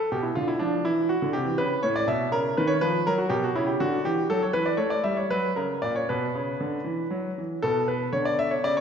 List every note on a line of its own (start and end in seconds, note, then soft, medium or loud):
0.12 0.29 B2 medium
0.12 0.24 G4 medium
0.23 0.35 E4 medium
0.35 0.54 D3 medium
0.35 0.48 F4 medium
0.48 0.60 E4 medium
0.59 0.78 F3 medium
0.59 0.84 D4 medium
0.85 1.12 E3 medium
0.85 1.09 E4 medium
1.09 1.34 F#4 medium
1.22 1.33 D3 medium
1.33 1.45 C3 medium
1.33 1.58 G4 medium
1.45 1.57 E3 medium
1.58 1.76 C#3 medium
1.58 1.82 B4 loud
1.83 2.01 A2 medium
1.83 1.95 C#5 loud
1.96 2.08 D5 medium
2.08 2.25 B2 medium
2.08 2.29 E5 loud
2.32 2.50 C#3 medium
2.32 2.53 A#4 loud
2.57 2.75 D#3 medium
2.57 2.69 B4 medium
2.67 2.81 C#5 loud
2.81 2.99 F3 medium
2.81 3.06 B4 loud
3.07 3.24 F#3 medium
3.07 3.18 A#4 loud
3.18 3.30 F#4 medium
3.29 3.47 B2 medium
3.29 3.42 G4 loud
3.44 3.55 F#4 medium
3.55 3.73 C#3 medium
3.55 3.67 E4 medium
3.67 3.79 G4 medium
3.80 3.98 D3 medium
3.80 4.05 F#4 medium
4.05 4.23 E3 medium
4.05 4.26 G4 loud
4.30 4.47 F#3 medium
4.30 4.42 A4 loud
4.43 4.54 C#5 medium
4.53 4.72 E3 medium
4.53 4.66 B4 loud
4.66 4.78 D5 medium
4.77 4.96 A3 medium
4.77 4.90 C#5 medium
4.90 5.03 D5 medium
5.04 5.22 G3 medium
5.04 5.16 E5 medium
5.17 5.29 C#5 medium
5.30 5.49 F#3 medium
5.30 5.52 B4 loud
5.56 5.75 C#3 medium
5.56 5.81 A#4 medium
5.82 6.01 A#2 medium
5.82 5.94 D5 medium
5.96 6.08 C#5 medium
6.09 6.27 B2 medium
6.09 7.38 B4 medium
6.35 6.53 C#3 medium
6.61 6.79 D3 medium
6.84 7.03 E3 medium
7.10 7.29 F#3 medium
7.38 7.56 E3 medium
7.62 8.04 B2 medium
7.62 8.81 B3 soft
7.62 7.84 A4 loud
7.88 8.09 B4 medium
8.13 8.53 D3 medium
8.13 8.25 C#5 medium
8.25 8.38 D5 medium
8.39 8.51 E5 loud
8.51 8.63 C#5 medium
8.64 8.81 C#3 medium
8.64 8.76 D5 loud
8.77 8.81 C#5 loud